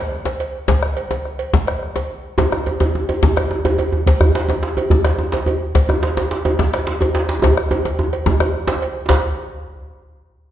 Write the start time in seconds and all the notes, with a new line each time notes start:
0.25 bombo rim, cowbell, djembe slap, djembe tone
0.40 bombo rim, cowbell, djembe slap
0.68 bombo rim, bombo low, cowbell, djembe slap, djembe bass
0.83 bombo rim
0.97 cowbell, djembe slap
1.11 cowbell, djembe slap, djembe tone
1.25 bombo rim, djembe slap
1.39 cowbell
1.53 bombo low, djembe slap, djembe bass
1.67 bombo rim, cowbell, djembe slap
1.83 bombo rim
1.96 bombo rim, cowbell, djembe slap, djembe tone
2.10 djembe slap
2.38 bombo low, cowbell, djembe slap, djembe tone, djembe bass
2.52 bombo rim, djembe tone
2.66 cowbell, djembe tone
2.80 bombo rim, cowbell, djembe slap, djembe tone
2.95 djembe tone
3.09 bombo rim, cowbell, djembe slap, djembe tone
3.23 bombo low, djembe slap, djembe tone, djembe bass
3.37 bombo rim, cowbell, djembe tone
3.51 djembe tone
3.65 bombo rim, cowbell, djembe slap, djembe tone
3.78 bombo rim, cowbell, djembe slap, djembe tone
3.92 djembe tone
4.06 bombo low, cowbell, djembe slap, djembe bass
4.21 bombo rim, djembe bass
4.35 cowbell, djembe slap
4.49 bombo rim, cowbell, djembe slap, djembe tone
4.63 djembe slap
4.77 bombo rim, cowbell, djembe slap, djembe tone
4.90 bombo low, djembe slap, djembe bass
5.04 bombo rim, cowbell, djembe slap
5.19 djembe tone
5.32 bombo rim, cowbell, djembe slap, djembe tone
5.46 bombo rim, cowbell, djembe slap, djembe tone
5.75 bombo low, cowbell, djembe slap, djembe bass
5.89 bombo rim, djembe tone
6.03 cowbell, djembe slap
6.17 bombo rim, cowbell, djembe slap, djembe tone
6.31 djembe slap
6.45 bombo rim, cowbell, djembe slap, djembe tone
6.59 bombo low, djembe slap, djembe bass
6.73 bombo rim, cowbell, djembe slap
6.87 djembe slap
7.01 bombo rim, cowbell, djembe slap, djembe tone
7.15 bombo rim, cowbell, djembe slap
7.29 djembe slap
7.42 bombo rim, bombo low, cowbell, djembe slap, djembe tone, djembe bass
7.57 bombo rim
7.71 cowbell, djembe tone
7.85 cowbell, djembe slap, djembe tone
7.99 djembe tone
8.13 bombo rim, cowbell
8.26 bombo low, djembe slap, djembe tone, djembe bass
8.40 bombo rim, cowbell, djembe tone
8.68 cowbell, djembe slap, djembe tone
8.82 bombo rim, cowbell
8.95 djembe slap
9.09 bombo low, cowbell, djembe slap, djembe bass